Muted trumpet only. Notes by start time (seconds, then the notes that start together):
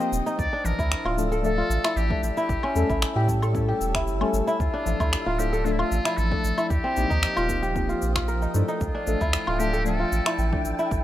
0.39 D5
0.65 A#4
1.45 A4
1.97 G4
2.23 G4
4.61 F4
5.39 G4
5.65 F4
5.72 E4
5.79 F4
6.18 A4
6.70 G4
8.81 F4
9.60 G4
9.86 A4
10.91 A4